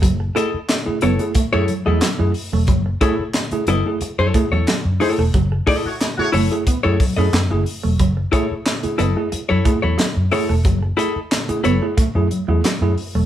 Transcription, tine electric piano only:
\new Staff \with { instrumentName = "Tine electric piano" } { \time 4/4 \key fis \dorian \tempo 4 = 90 fis16 r16 <e' gis'>16 r8 <a e' gis'>16 fis16 <a e' gis'>16 r16 <a e' gis'>16 fis16 <a e' gis'>16 r16 <a e' gis'>16 r16 fis16 | fis16 r16 <a e' gis'>16 <e' gis'>16 r16 <a e' gis'>16 fis16 <a e' gis'>16 <e' gis'>16 fis16 <a e' gis'>16 r8. <a e' gis'>16 r16 | fis16 r16 <e' gis'>16 r8 <a e' gis'>16 fis16 <a e' gis'>16 r16 <a e' gis'>16 fis16 <a e' gis'>16 r16 <a e' gis'>16 r16 fis16 | fis16 r16 <a e' gis'>16 <e' gis'>16 r16 <a e' gis'>16 fis16 <a e' gis'>16 <e' gis'>16 fis16 <a e' gis'>16 r8. <a e' gis'>16 r16 |
fis16 r16 <e' gis'>16 r8 <a e' gis'>16 fis16 <a e' gis'>16 r16 <a e' gis'>16 fis16 <a e' gis'>16 r16 <a e' gis'>16 r16 fis16 | }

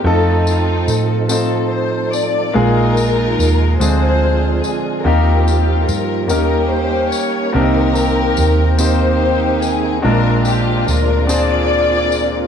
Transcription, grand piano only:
<<
  \new Staff \with { instrumentName = "Grand piano" } { \time 6/8 \key ees \major \tempo 4. = 48 <a c' ees' f' a'>4~ <a c' ees' f' a'>16 r16 <a c' ees' f' c''>4~ <a c' ees' f' c''>16 r16 | <aes bes ees' f' aes'>4~ <aes bes ees' f' aes'>16 r16 <aes c' d' f' aes'>4~ <aes c' d' f' aes'>16 r16 | <bes c' ees' f' g'>4~ <bes c' ees' f' g'>16 r16 <bes des' ees' g' bes'>4~ <bes des' ees' g' bes'>16 r16 | <bes c' d' ees' g' bes'>4~ <bes c' d' ees' g' bes'>16 r16 <bes c' ees' g' c''>4~ <bes c' ees' g' c''>16 r16 |
<aes c' d' f' bes'>4~ <aes c' d' f' bes'>16 r16 <c' d' f' aes' c''>4~ <c' d' f' aes' c''>16 r16 | }
  \new Staff \with { instrumentName = "Grand piano" } { \clef bass \time 6/8 \key ees \major r2. | bes,4. d4. | ees4. ees4. | c4. r4. |
bes,4. r4. | }
>>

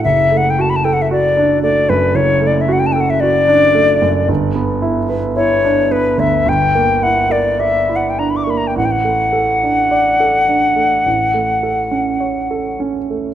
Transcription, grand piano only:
\new Staff \with { instrumentName = "Grand piano" } { \time 4/4 \key d \major \tempo 4 = 54 fis,,16 a16 fis'16 a'16 fis'16 d'16 a16 fis,16 fis,,16 a16 fis'16 a'16 fis'16 d'16 a16 fis,16 | g,,16 b16 e'16 b'16 e'16 d'16 b16 d,16 g,,16 bes16 e'16 bes'16 d''16 e'16 d'16 bes16 | a,,16 a16 a'16 d'16 d''16 a'16 d'16 a16 a,,16 a16 a'16 cis'16 cis''16 a'16 cis'16 a16 | }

